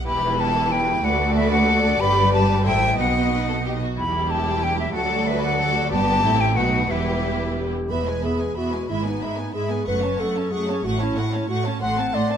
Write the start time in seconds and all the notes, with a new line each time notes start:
0.06 E1 E2 E3 E4 G4 B4 B5
0.39 A4 A5
0.72 B4 G5
1.04 D2 A3 F#4 A4 D5 F#5
1.35 B4 E5
1.51 F#5
1.69 A4
2.00 G1 G2 G3 G4 B4 B5
2.33 B4 A5
2.66 A1 A2 E4 A4 C5 E5 G5
2.98 B1 B2 B3 D#4 F#4 B4 D#5 F#5
3.31 B4
3.49 A4
3.65 G4
3.82 F#4
3.98 E1 E2 G3 E4 G4 B5
4.30 G4 A5
4.63 G5
4.79 E5
4.95 D2 F#3 F#4 A4 D5 F#5
5.27 B4 E5
5.43 F#5
5.60 A4
5.91 G1 G2 B3 G4 B4 A5
6.24 A1 A2 C4 E4 A4 E5
6.40 G5
6.56 B1 B2 A3 D#4 F#4 B4 F#5
6.90 E1 E2 G3 E4 G4 E5
7.57 G4
7.90 E1 E2 B3 B4 E5 B5
8.06 G#3 B4 G#5
8.23 E2 B3 G#4 E5 B5
8.40 G#3 B4 G#5
8.56 E2 B3 F#4 E5 B5
8.72 G#3 B4 G#5
8.88 G#1 G#2 G#3 E4 E5 B5
9.05 B3 D#4 B4 G#5
9.21 G#2 G#3 E5 B5
9.37 B3 B4 G#5
9.54 G#2 G#3 G#4 E5 B5
9.70 B3 B4 G#5
9.86 F#1 F#2 A3 B4 F#5 C#6
10.02 C#4 C#5 A5
10.19 F#2 A3 A4 F#5 C#6
10.35 C#4 C#5 A5
10.52 F#2 A3 G#4 F#5 C#6
10.68 C#4 C#5 A5
10.84 A1 A2 A3 F#4 F#5 C#6
11.00 C#4 E4 C#5 A5
11.16 A2 A3 F#5 C#6
11.33 C#4 C#5 A5
11.49 A2 A3 F#4 F#5 C#6
11.66 C#4 C#5 A5
11.81 A1 A2 A3 F#5 C6
11.98 C4 A5
12.14 A2 A3 D5 F#5 C6
12.30 C4 A5